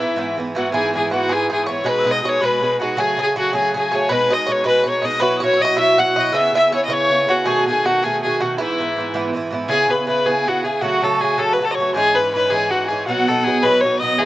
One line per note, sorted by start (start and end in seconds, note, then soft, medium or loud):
0.00 0.15 G#2 soft
0.00 0.16 E3 medium
0.00 0.17 B3 medium
0.00 0.38 E4 medium
0.00 0.17 E4 medium
0.00 0.38 E5 medium
0.16 0.35 G#2 medium
0.16 0.36 E3 medium
0.16 0.37 B3 medium
0.16 0.38 E4 medium
0.36 0.54 G#2 medium
0.36 0.54 E3 medium
0.36 0.55 B3 medium
0.36 0.56 E4 medium
0.55 0.71 G#2 medium
0.55 0.72 E3 medium
0.55 0.72 B3 medium
0.55 0.73 E4 medium
0.55 0.72 F#4 medium
0.55 0.74 F#4 medium
0.55 0.73 F#5 medium
0.72 0.92 G#2 medium
0.72 0.94 E3 medium
0.72 0.94 B3 medium
0.72 0.94 E4 medium
0.72 0.92 G#4 medium
0.72 0.93 G#4 medium
0.72 0.93 G#5 medium
0.94 1.09 G#2 medium
0.94 1.11 E3 medium
0.94 1.11 B3 medium
0.94 1.13 E4 medium
0.94 1.11 G#4 medium
0.94 1.12 G#4 medium
0.94 1.10 G#5 medium
1.10 1.27 G#2 medium
1.10 1.28 E3 medium
1.10 1.29 B3 medium
1.10 1.30 E4 medium
1.10 1.29 F#4 medium
1.10 1.34 F#4 medium
1.10 1.28 F#5 medium
1.28 1.48 G#2 medium
1.28 1.49 E3 medium
1.28 1.50 B3 medium
1.28 1.51 E4 medium
1.28 1.48 G#4 medium
1.28 1.49 G#5 medium
1.32 1.51 G#4 loud
1.50 1.65 G#2 medium
1.50 1.66 E3 medium
1.50 1.67 B3 medium
1.50 1.68 E4 medium
1.50 1.66 G#4 medium
1.50 1.68 G#4 medium
1.50 1.65 G#5 medium
1.64 1.83 G#2 medium
1.64 1.84 E3 medium
1.64 1.85 C#5 medium
1.64 1.79 C#6 medium
1.64 1.68 D#6 medium
1.68 1.85 B3 medium
1.68 1.86 E4 medium
1.68 1.90 C#5 medium
1.80 2.03 B2 medium
1.80 1.88 C#6 medium
1.85 2.04 G#3 medium
1.85 2.05 D#4 medium
1.85 2.06 G#4 medium
1.85 2.05 B4 medium
1.85 2.13 B4 loud
1.85 2.00 B5 medium
1.99 2.08 E6 soft
2.04 2.21 B2 medium
2.04 2.22 G#3 medium
2.04 2.23 D#4 medium
2.04 2.24 G#4 medium
2.04 2.25 D#5 medium
2.04 2.42 D#6 medium
2.11 2.23 D#5 loud
2.22 2.39 B2 medium
2.22 2.40 G#3 medium
2.22 2.41 D#4 medium
2.22 2.41 G#4 medium
2.22 2.41 C#5 medium
2.22 2.30 D#5 medium
2.29 2.46 C#5 loud
2.40 2.59 B2 medium
2.40 2.61 G#3 medium
2.40 2.62 D#4 medium
2.40 2.63 G#4 medium
2.40 2.78 B4 medium
2.40 2.78 B5 medium
2.45 2.80 B4 medium
2.60 2.78 B2 medium
2.60 2.79 G#3 medium
2.60 2.80 D#4 medium
2.60 2.81 G#4 medium
2.79 2.97 B2 medium
2.79 2.97 G#3 medium
2.79 2.97 D#4 medium
2.79 3.02 F#4 medium
2.79 2.97 F#4 medium
2.79 3.00 F#5 medium
2.83 2.97 G#4 medium
2.97 3.16 C#3 medium
2.97 3.18 F#3 medium
2.97 3.18 A3 medium
2.97 3.18 G#4 medium
2.97 3.19 G#4 medium
2.97 3.19 G#4 loud
2.97 3.19 G#5 medium
3.17 3.35 C#3 medium
3.17 3.36 F#3 medium
3.17 3.37 A3 medium
3.17 3.35 G#4 medium
3.17 3.37 G#4 medium
3.17 3.36 G#4 medium
3.17 3.38 G#5 medium
3.36 3.52 C#3 medium
3.36 3.53 F#3 medium
3.36 3.54 A3 medium
3.36 3.52 F#4 medium
3.36 3.54 F#4 medium
3.36 3.54 G#4 medium
3.36 3.54 F#5 medium
3.53 3.73 C#3 medium
3.53 3.74 F#3 medium
3.53 3.75 A3 medium
3.53 3.72 G#4 medium
3.53 3.75 G#4 medium
3.53 3.74 G#4 medium
3.53 3.73 G#5 medium
3.73 3.91 C#3 medium
3.73 3.92 F#3 medium
3.73 3.93 A3 medium
3.73 3.91 G#4 medium
3.73 4.11 G#5 medium
3.78 3.94 G#4 medium
3.78 3.97 G#4 medium
3.92 4.09 C#3 medium
3.92 4.10 F#3 medium
3.92 4.10 A3 medium
3.92 4.11 G#4 medium
3.92 4.08 C#5 medium
3.92 4.13 C#5 medium
4.09 4.28 B2 medium
4.09 4.30 G#3 medium
4.09 4.31 D#4 medium
4.09 4.31 G#4 medium
4.09 4.29 B4 loud
4.09 4.35 B4 loud
4.09 4.30 B5 loud
4.29 4.46 B2 medium
4.29 4.47 G#3 medium
4.29 4.48 D#4 medium
4.29 4.49 G#4 medium
4.29 4.46 D#5 medium
4.29 4.53 D#5 medium
4.29 4.51 D#6 medium
4.46 4.63 B2 medium
4.46 4.64 G#3 medium
4.46 4.65 D#4 medium
4.46 4.65 G#4 medium
4.46 4.65 C#5 medium
4.46 4.68 C#6 medium
4.52 4.66 C#5 medium
4.64 4.83 B2 medium
4.64 4.85 G#3 medium
4.64 4.86 D#4 medium
4.64 4.87 G#4 medium
4.64 4.84 B4 medium
4.64 4.86 B4 medium
4.64 4.91 B5 medium
4.84 5.01 B2 soft
4.84 5.02 G#3 medium
4.84 5.04 D#4 medium
4.84 5.01 C#5 medium
4.88 5.05 G#4 medium
4.88 5.07 C#5 medium
4.88 5.03 C#6 medium
5.02 5.19 B2 medium
5.02 5.21 G#3 medium
5.02 5.21 D#4 medium
5.02 5.21 G#4 medium
5.02 5.19 D#5 medium
5.02 5.23 D#5 loud
5.02 5.23 D#6 medium
5.20 5.40 B2 medium
5.20 5.40 F#3 medium
5.20 5.42 E4 medium
5.20 5.42 F#4 medium
5.20 5.40 B4 medium
5.20 5.42 B4 loud
5.20 5.38 B5 medium
5.37 5.52 C#5 medium
5.37 5.44 D#6 soft
5.41 5.57 B2 medium
5.41 5.58 F#3 medium
5.41 5.60 E4 medium
5.41 5.61 F#4 medium
5.41 5.63 C#5 loud
5.41 5.56 C#6 medium
5.53 5.64 C#5 medium
5.53 5.61 E6 medium
5.59 5.74 B2 medium
5.59 5.76 F#3 medium
5.59 5.76 E4 medium
5.59 5.77 F#4 medium
5.59 5.78 D#5 loud
5.59 5.78 D#6 medium
5.65 5.76 C#5 loud
5.76 5.96 B2 medium
5.76 5.97 F#3 medium
5.76 5.98 E4 medium
5.76 5.99 F#4 medium
5.76 5.96 E5 medium
5.76 6.00 E6 medium
5.80 6.01 E5 loud
5.97 6.13 B2 medium
5.97 6.15 F#3 soft
5.97 6.16 E4 medium
5.97 6.17 F#4 medium
5.97 6.15 F#5 medium
5.97 6.22 F#5 medium
5.97 6.34 F#6 loud
6.14 6.32 B2 medium
6.14 6.32 F#3 medium
6.14 6.33 E4 medium
6.14 6.34 F#4 medium
6.14 6.32 D#5 medium
6.20 6.38 D#5 medium
6.32 6.50 C#3 medium
6.32 6.52 B3 medium
6.32 6.53 E4 medium
6.32 6.54 G#4 medium
6.32 6.53 E5 medium
6.32 6.54 E6 loud
6.36 6.56 E5 loud
6.52 6.69 C#3 medium
6.52 6.71 B3 medium
6.52 6.71 E4 medium
6.52 6.72 G#4 medium
6.52 6.72 E5 medium
6.52 6.87 E6 medium
6.56 6.72 E5 medium
6.70 6.87 C#3 soft
6.70 6.88 B3 medium
6.70 6.88 E4 medium
6.70 6.89 G#4 medium
6.70 6.89 C#5 medium
6.75 6.84 C#5 loud
6.85 7.08 C#3 medium
6.85 7.09 B3 medium
6.85 6.95 D#5 medium
6.85 7.20 C#6 medium
6.89 7.10 E4 medium
6.89 7.11 G#4 medium
6.89 7.29 C#5 medium
6.93 7.32 C#5 loud
7.09 7.26 C#3 medium
7.09 7.27 B3 medium
7.09 7.28 E4 medium
7.09 7.29 G#4 medium
7.27 7.45 C#3 medium
7.27 7.45 B3 medium
7.27 7.46 E4 medium
7.27 7.45 F#4 medium
7.27 7.49 F#4 medium
7.27 7.47 G#4 medium
7.44 7.65 B2 medium
7.44 7.66 D#3 medium
7.44 7.67 A3 medium
7.44 7.67 F#4 medium
7.44 7.81 G#4 medium
7.44 7.67 G#4 loud
7.44 7.64 G#5 medium
7.66 7.83 B2 medium
7.66 7.84 D#3 medium
7.66 7.85 A3 medium
7.66 7.86 F#4 medium
7.66 7.87 G#4 medium
7.66 7.84 G#5 medium
7.84 8.02 B2 soft
7.84 8.02 D#3 medium
7.84 8.03 A3 medium
7.84 8.05 F#4 medium
7.84 8.01 F#4 medium
7.84 8.03 F#4 medium
7.84 8.05 F#5 medium
8.03 8.22 B2 medium
8.03 8.24 D#3 medium
8.03 8.24 A3 medium
8.03 8.24 F#4 medium
8.03 8.38 G#4 medium
8.03 8.22 G#4 loud
8.03 8.23 G#5 medium
8.22 8.39 B2 soft
8.22 8.40 D#3 medium
8.22 8.41 A3 medium
8.22 8.43 G#4 medium
8.22 8.40 G#5 medium
8.27 8.42 F#4 medium
8.40 8.58 B2 medium
8.40 8.58 D#3 medium
8.40 8.59 A3 medium
8.40 8.57 F#4 medium
8.40 8.58 F#4 medium
8.40 8.59 F#4 medium
8.40 8.58 F#5 medium
8.58 8.77 G#2 medium
8.58 8.79 E3 medium
8.58 8.80 B3 medium
8.58 9.31 E4 medium
8.58 8.80 E4 medium
8.58 9.32 E5 medium
8.78 8.95 G#2 medium
8.78 8.97 E3 medium
8.78 8.98 B3 medium
8.78 8.98 E4 medium
8.96 9.13 G#2 medium
8.96 9.13 E3 medium
8.96 9.14 B3 medium
9.00 9.14 E4 medium
9.14 9.32 G#2 medium
9.14 9.33 E3 medium
9.14 9.35 B3 medium
9.14 9.35 E4 medium
9.33 9.49 G#2 medium
9.33 9.51 E3 medium
9.33 9.51 B3 medium
9.33 9.53 E4 medium
9.51 9.68 G#2 medium
9.51 9.69 E3 medium
9.51 9.68 B3 medium
9.51 9.68 E4 medium
9.69 9.87 C#3 medium
9.69 9.87 B3 medium
9.69 9.89 E4 medium
9.69 9.92 G#4 loud
9.69 9.90 G#4 medium
9.69 9.93 G#5 medium
9.88 10.06 C#3 medium
9.88 10.06 B3 medium
9.88 10.08 E4 medium
9.88 10.09 G#4 medium
9.88 10.07 B4 medium
9.88 10.09 B5 medium
10.07 10.24 C#3 medium
10.07 10.25 B3 medium
10.07 10.26 E4 medium
10.07 10.26 G#4 medium
10.07 10.28 B4 medium
10.07 10.25 B5 medium
10.25 10.45 C#3 medium
10.25 10.46 B3 medium
10.25 10.47 E4 medium
10.25 10.49 G#4 loud
10.25 10.47 G#4 medium
10.25 10.49 G#5 medium
10.46 10.62 C#3 soft
10.46 10.63 B3 medium
10.46 10.64 E4 medium
10.46 10.65 F#4 medium
10.46 10.65 G#4 medium
10.46 10.64 F#5 medium
10.63 10.80 C#3 medium
10.63 10.82 B3 medium
10.63 10.82 E4 medium
10.63 10.83 G#4 medium
10.63 10.83 G#5 medium
10.81 11.00 C#3 medium
10.81 11.01 F#3 medium
10.81 11.02 A3 medium
10.81 11.05 F#4 loud
10.81 11.04 F#4 medium
10.81 11.04 F#5 medium
11.01 11.18 C#3 medium
11.01 11.20 F#3 medium
11.01 11.21 A3 medium
11.01 11.21 F#4 medium
11.01 11.22 A4 medium
11.01 11.21 A5 medium
11.19 11.37 C#3 medium
11.19 11.37 F#3 medium
11.19 11.38 A3 medium
11.19 11.40 G#4 medium
11.19 11.40 G#5 medium
11.23 11.39 F#4 medium
11.38 11.58 C#3 medium
11.38 11.59 F#3 medium
11.38 11.60 A3 medium
11.38 11.60 F#4 medium
11.38 11.54 A4 loud
11.38 11.52 A5 medium
11.53 11.67 B4 medium
11.59 11.76 C#3 medium
11.59 11.77 F#3 soft
11.59 11.78 A3 medium
11.59 11.78 F#4 medium
11.59 11.76 A5 medium
11.65 11.73 A4 medium
11.71 11.93 C#5 medium
11.71 11.76 D#5 medium
11.71 11.95 C#6 medium
11.77 11.94 C#3 soft
11.77 11.95 F#3 medium
11.77 11.96 A3 medium
11.77 11.96 F#4 medium
11.94 12.15 G#2 medium
11.94 12.16 E3 medium
11.94 12.16 C#4 medium
11.94 12.16 D#4 medium
11.94 12.16 G#4 loud
11.94 12.16 G#5 medium
12.14 12.33 G#2 medium
12.14 12.34 E3 medium
12.14 12.33 B4 loud
12.14 12.32 B5 medium
12.18 12.34 C#4 medium
12.18 12.35 D#4 medium
12.32 12.49 G#2 medium
12.32 12.50 E3 medium
12.32 12.51 C#4 medium
12.32 12.52 B4 loud
12.32 12.48 B5 medium
12.37 12.52 D#4 medium
12.49 12.70 G#2 medium
12.49 12.71 E3 medium
12.49 12.72 C#4 medium
12.49 12.72 D#4 medium
12.49 12.72 G#4 loud
12.49 12.71 G#5 medium
12.70 12.87 G#2 medium
12.70 12.89 E3 medium
12.70 12.90 C#4 medium
12.70 12.90 F#4 medium
12.70 12.87 F#5 medium
12.74 12.90 D#4 medium
12.86 13.06 G#2 medium
12.86 13.06 G#4 medium
12.86 13.05 G#5 medium
12.90 13.07 E3 medium
12.90 13.07 C#4 medium
12.90 13.08 D#4 medium
13.05 13.26 B2 medium
13.05 13.27 F#3 medium
13.05 13.28 B3 medium
13.05 13.29 D#4 medium
13.05 13.30 F#4 loud
13.05 13.58 F#5 medium
13.28 13.44 B2 medium
13.28 13.45 F#3 medium
13.28 13.46 B3 medium
13.28 13.47 D#4 medium
13.28 13.46 A4 medium
13.44 13.61 B2 medium
13.44 13.62 F#3 soft
13.44 13.63 B3 medium
13.44 13.64 G#4 loud
13.48 13.64 D#4 medium
13.62 13.82 B2 medium
13.62 13.83 F#3 medium
13.62 13.84 B3 medium
13.62 13.85 D#4 medium
13.62 13.82 B4 loud
13.62 13.81 B5 medium
13.81 14.00 B2 soft
13.81 14.01 F#3 medium
13.81 13.99 C#5 loud
13.81 14.02 C#6 medium
13.86 14.02 B3 medium
13.86 14.03 D#4 medium
13.99 14.18 B2 medium
13.99 14.19 F#3 medium
13.99 14.19 B3 medium
13.99 14.20 D#5 medium
13.99 14.18 D#6 medium
14.04 14.20 D#4 medium
14.18 14.25 G#2 medium
14.18 14.25 E3 medium
14.18 14.25 B3 medium
14.18 14.25 E4 medium
14.18 14.25 G#4 loud
14.18 14.25 G#5 medium